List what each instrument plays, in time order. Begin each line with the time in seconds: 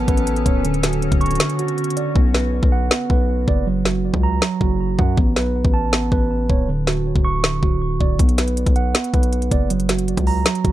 Already playing: ambient pad B3 C#4 A4, tine electric piano B3 A5
0.08 808-style bass A1, tine electric piano B4, kick, closed hi-hat
0.17 closed hi-hat
0.27 closed hi-hat
0.36 closed hi-hat
0.46 808-style bass D1, tine electric piano C#5, kick, closed hi-hat
0.65 ambient pad D3 C#4 F#4, tine electric piano D3, closed hi-hat
0.74 closed hi-hat
0.83 tine electric piano F#4, snare, closed hi-hat
0.93 closed hi-hat
1.02 closed hi-hat
1.12 808-style bass D1, kick, closed hi-hat
1.21 tine electric piano C#6, closed hi-hat, open hi-hat
1.26 closed hi-hat
1.31 closed hi-hat
1.35 closed hi-hat
1.40 tine electric piano D3, snare, closed hi-hat
1.50 closed hi-hat
1.59 tine electric piano F#4, closed hi-hat
1.68 closed hi-hat
1.78 closed hi-hat
1.84 closed hi-hat
1.90 closed hi-hat
1.97 tine electric piano D5, closed hi-hat
2.16 808-style bass B1, tine electric piano B3, kick
2.35 tine electric piano B4, snare
2.63 808-style bass B1, kick
2.72 tine electric piano F#5
2.91 tine electric piano B3, snare
3.10 808-style bass B1, tine electric piano B4, kick
3.48 808-style bass F#1, tine electric piano D5, kick
3.66 tine electric piano F#3
3.85 tine electric piano F#4, snare
4.14 808-style bass C#2, kick
4.23 tine electric piano A#5
4.42 tine electric piano F#3, snare
4.61 808-style bass F#1, tine electric piano F#4, kick
4.99 808-style bass F#2, tine electric piano F#5, kick
5.17 808-style bass A1, tine electric piano B3, kick
5.36 808-style bass B1, tine electric piano B4, snare
5.65 808-style bass A1, kick
5.74 tine electric piano A5
5.92 tine electric piano B3, snare
6.12 808-style bass A1, tine electric piano B4, kick
6.50 808-style bass D1, tine electric piano C#5, kick
6.69 tine electric piano D3
6.87 tine electric piano F#4, snare
7.16 808-style bass D1, kick
7.25 tine electric piano C#6
7.44 tine electric piano D3, snare
7.63 808-style bass D1, tine electric piano F#4, kick
8.00 808-style bass D1, tine electric piano D5, kick
8.19 808-style bass B1, tine electric piano B3, kick, closed hi-hat
8.29 closed hi-hat
8.38 tine electric piano B4, snare, closed hi-hat
8.48 closed hi-hat
8.57 closed hi-hat
8.66 808-style bass B1, kick, closed hi-hat
8.76 tine electric piano F#5, closed hi-hat
8.95 tine electric piano B3, snare, closed hi-hat
9.04 closed hi-hat
9.14 808-style bass B1, tine electric piano B4, kick, closed hi-hat
9.23 closed hi-hat
9.33 closed hi-hat
9.42 closed hi-hat
9.51 808-style bass F#1, tine electric piano D5, kick, closed hi-hat
9.70 tine electric piano F#3, closed hi-hat
9.80 closed hi-hat
9.89 tine electric piano F#4, snare, closed hi-hat
9.99 closed hi-hat
10.08 closed hi-hat
10.17 808-style bass C#2, kick, closed hi-hat
10.27 tine electric piano A#5, open hi-hat
10.46 tine electric piano F#3, snare, closed hi-hat
10.55 closed hi-hat
10.64 808-style bass F#1, tine electric piano F#4, kick, closed hi-hat